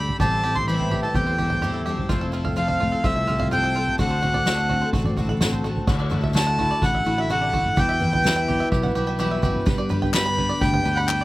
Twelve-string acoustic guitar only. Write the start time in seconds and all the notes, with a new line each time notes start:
Already playing: G3
0.00 D4 G4 A4
0.20 A2 E3 G3 C4 E4 A4
0.44 G3 C4 E4 A4
0.56 G3 C4 E4 A4
0.68 A2 E3 G3 C4 E4 A4
1.03 G3 C4 E4 A4
1.15 G3 C4 E4 A4
1.27 G3 C4 E4 A4
1.39 G3 C4 E4 A4
1.51 G3 C4 E4 A4
1.63 A2 E3 G3 C4 E4 A4
1.87 G3 C4 E4 A4
2.09 F3 A3 C4 E4 A4
2.32 A3 C4 E4 A4
2.45 C4 E4 A4
2.56 F3 A3 C4 A4
2.91 C4 E4 A4
3.03 A3 C4 E4 A4
3.15 C4 E4 A4
3.27 A3 C4 E4 A4
3.38 C4 E4 A4
3.51 F3 A3 C4 E4 A4
3.75 A3 C4 E4 A4
3.98 D3 A3 C4 F#4 A4
4.21 A3 C4 F#4 A4
4.34 C4 F#4 A4
4.46 D3 A3 C4 F#4 A4
4.81 C4 F#4 A4
4.93 A3 C4 F#4 A4
5.06 C4 F#4 A4
5.17 A3 C4 F#4 A4
5.29 C4 F#4 A4
5.41 D3 A3 C4 F#4 A4
5.64 A3 C4 F#4 A4
5.88 D3 A3 E4 F#4 A4
5.99 E4 F#4 A4
6.10 A3 E4 F#4 A4
6.21 E4 F#4 A4
6.33 D3 A3 E4 F#4 A4
6.69 E4 F#4 A4
6.92 E4 F#4 A4
7.04 A3 E4 F#4 A4
7.18 E4 F#4 A4
7.30 D3 A3 E4 F#4 A4
7.52 A3 E4 F#4 A4
7.76 E3 G3 E4 F#4 B4
7.89 E4 F#4 B4
8.00 G3 E4 F#4 B4
8.12 E4 F#4 B4
8.24 E3 G3 E4 B4
8.59 E4 F#4 B4
8.82 E4 F#4 B4
8.95 G3 E4 F#4 B4
9.07 E4 F#4 B4
9.19 E3 G3 E4 F#4 B4
9.42 G3 E4 F#4 B4
9.65 G3 D4 G4 B4
9.78 D4 G4 B4
9.89 G3 D4 G4 B4
10.02 D4 G4 B4
10.14 G3 D4 G4 B4
10.50 D4 G4 B4
10.74 D4 G4 B4
10.86 G3 D4 G4 B4
10.98 D4 G4 B4
11.09 G3 D4 G4 B4